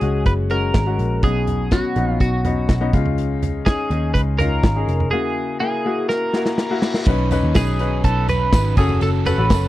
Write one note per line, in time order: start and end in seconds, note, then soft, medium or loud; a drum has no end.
0.00 0.24 C#2 medium
0.00 1.25 C#3 medium
0.00 0.02 G#3 medium
0.00 0.46 G#3 medium
0.00 0.02 C#4 medium
0.00 0.46 C#4 medium
0.00 0.02 F#4 medium
0.00 0.47 F#4 medium
0.00 0.26 G#4 medium
0.00 closed hi-hat medium
0.26 0.71 F#1 medium
0.26 0.33 B4 medium
0.26 kick medium
0.26 closed hi-hat medium
0.50 0.84 G#3 medium
0.50 0.84 C#4 medium
0.50 0.84 F#4 medium
0.50 1.23 A#4 medium
0.50 closed hi-hat medium
0.74 0.97 G#1 medium
0.74 kick medium
0.74 snare medium
0.74 closed hi-hat medium
0.87 1.20 G#3 medium
0.87 1.20 C#4 medium
0.87 1.20 F#4 medium
0.99 1.22 A#1 medium
0.99 closed hi-hat medium
1.23 1.81 B1 medium
1.23 1.92 B2 medium
1.23 1.92 F#3 soft
1.23 1.68 B3 medium
1.23 1.68 C#4 medium
1.23 1.68 D#4 medium
1.23 1.74 G#4 medium
1.23 kick medium
1.23 closed hi-hat medium
1.47 closed hi-hat medium
1.47 floor tom soft
1.71 1.94 B3 medium
1.71 1.94 C#4 medium
1.71 1.94 F#4 medium
1.71 2.09 F#4 medium
1.71 kick loud
1.71 snare medium
1.71 closed hi-hat medium
1.96 2.19 A#1 medium
1.96 2.41 B3 medium
1.96 2.41 C#4 medium
1.96 2.41 D#4 medium
1.96 closed hi-hat medium
2.09 2.20 F4 medium
2.20 2.66 B1 medium
2.20 2.90 F#4 medium
2.20 kick medium
2.20 closed hi-hat medium
2.45 2.78 B3 medium
2.45 2.78 C#4 medium
2.45 2.78 D#4 medium
2.45 closed hi-hat medium
2.45 floor tom medium
2.69 2.92 B1 medium
2.69 kick medium
2.69 snare medium
2.69 closed hi-hat medium
2.81 2.93 B3 medium
2.81 2.92 C#4 medium
2.81 2.92 D#4 medium
2.93 3.75 C#2 medium
2.93 3.62 C#3 medium
2.93 3.62 G#3 medium
2.93 3.60 C#4 medium
2.93 3.60 D#4 medium
2.93 3.61 F4 medium
2.93 kick medium
2.93 closed hi-hat medium
3.06 floor tom medium
3.18 closed hi-hat medium
3.42 closed hi-hat medium
3.42 floor tom medium
3.66 3.89 C#4 medium
3.66 3.89 D#4 medium
3.66 4.13 G#4 medium
3.66 3.89 G#4 medium
3.66 kick medium
3.66 snare loud
3.66 closed hi-hat medium
3.90 4.13 D#2 medium
3.90 4.35 C#4 medium
3.90 4.36 D#4 medium
3.90 4.36 G#4 medium
3.90 closed hi-hat medium
4.14 4.60 C#2 medium
4.14 4.21 B4 loud
4.14 kick medium
4.14 closed hi-hat medium
4.39 4.73 C#4 medium
4.39 4.73 D#4 medium
4.39 4.73 F4 medium
4.39 5.11 A#4 medium
4.39 closed hi-hat medium
4.39 floor tom medium
4.63 4.86 G#1 medium
4.63 kick loud
4.63 snare loud
4.63 closed hi-hat medium
4.76 5.09 C#4 medium
4.76 5.10 D#4 medium
4.76 5.09 G#4 medium
4.88 5.10 F1 medium
4.88 closed hi-hat medium
5.00 floor tom medium
5.11 5.81 C#3 medium
5.11 5.57 A#3 medium
5.11 5.57 E4 medium
5.11 5.57 F#4 medium
5.11 5.57 G#4 medium
5.60 5.83 A#3 medium
5.60 5.83 E4 medium
5.60 6.09 G#4 medium
5.60 5.83 G#4 medium
5.86 6.30 A#3 medium
5.86 6.30 E4 medium
5.86 6.30 F#4 medium
6.09 6.78 A#4 medium
6.09 snare soft
6.09 reverse cymbal medium
6.34 6.67 A#3 medium
6.34 6.67 E4 medium
6.34 6.68 F#4 medium
6.34 snare medium
6.46 snare medium
6.58 snare medium
6.71 7.04 A#3 medium
6.71 7.04 E4 medium
6.71 7.04 F#4 medium
6.82 snare medium
6.94 snare medium
7.06 7.41 B1 medium
7.06 7.31 B2 medium
7.06 7.31 D#3 medium
7.06 7.31 F#3 medium
7.06 7.29 C#4 medium
7.06 7.31 C#4 medium
7.06 7.29 D#4 medium
7.06 7.30 D#4 medium
7.06 7.30 B4 medium
7.06 7.29 B4 loud
7.06 kick loud
7.06 crash medium
7.06 tambourine soft
7.30 7.55 F#3 soft
7.30 7.76 C#4 medium
7.30 7.55 C#4 medium
7.30 7.55 D#4 medium
7.30 7.76 D#4 medium
7.30 7.55 B4 medium
7.30 7.76 B4 medium
7.30 closed hi-hat medium
7.30 floor tom soft
7.30 tambourine medium
7.43 7.55 D#2 medium
7.54 8.01 B1 medium
7.54 8.04 B2 medium
7.54 8.04 D#3 medium
7.54 8.03 F#3 medium
7.54 8.04 C#4 medium
7.54 8.05 D#4 medium
7.54 8.04 G#4 medium
7.54 8.05 B4 medium
7.54 kick loud
7.54 snare loud
7.54 closed hi-hat medium
7.54 tambourine medium
7.79 8.69 C#4 medium
7.79 8.69 D#4 medium
7.79 8.70 B4 medium
7.79 closed hi-hat medium
7.79 tambourine soft
8.04 8.49 B1 medium
8.04 8.28 F#3 medium
8.04 8.29 C#4 medium
8.04 8.28 D#4 medium
8.04 8.29 A4 medium
8.04 8.27 B4 medium
8.04 kick medium
8.04 closed hi-hat medium
8.28 8.52 F#3 soft
8.28 8.52 C#4 medium
8.28 8.53 D#4 medium
8.28 8.52 B4 medium
8.28 8.77 B4 medium
8.28 closed hi-hat medium
8.28 floor tom medium
8.28 tambourine soft
8.52 8.75 G#1 medium
8.52 8.77 B2 medium
8.52 8.77 D#3 medium
8.52 8.77 F#3 loud
8.52 8.78 C#4 medium
8.52 8.77 D#4 medium
8.52 8.76 B4 medium
8.52 kick loud
8.52 snare loud
8.52 closed hi-hat medium
8.52 tambourine medium
8.76 9.00 F#1 loud
8.76 9.46 C#3 medium
8.76 9.22 C#4 medium
8.76 9.00 C#4 soft
8.76 9.22 F#4 medium
8.76 9.01 F#4 soft
8.76 9.02 G#4 medium
8.76 9.01 A4 medium
8.76 9.22 A4 medium
8.76 kick loud
8.76 tambourine soft
8.76 crash medium
8.89 floor tom medium
9.01 9.35 F#1 loud
9.01 9.26 F#3 medium
9.01 9.26 C#4 medium
9.01 9.26 F#4 medium
9.01 9.09 A4 medium
9.01 9.24 A4 medium
9.01 closed hi-hat medium
9.01 tambourine soft
9.25 9.36 C#4 medium
9.25 9.49 C#4 soft
9.25 9.36 F#4 medium
9.25 9.50 F#4 medium
9.25 9.50 A4 medium
9.25 9.36 A4 medium
9.25 9.68 B4 medium
9.25 closed hi-hat medium
9.25 floor tom medium
9.25 tambourine soft
9.37 9.49 A1 medium
9.37 9.68 C#4 medium
9.37 9.68 F#4 medium
9.37 9.68 A4 medium
9.50 9.68 F#1 loud
9.50 9.68 F#3 medium
9.50 9.68 C#4 medium
9.50 9.68 F#4 medium
9.50 9.68 A4 loud
9.50 kick medium
9.50 snare loud
9.50 closed hi-hat medium
9.50 tambourine medium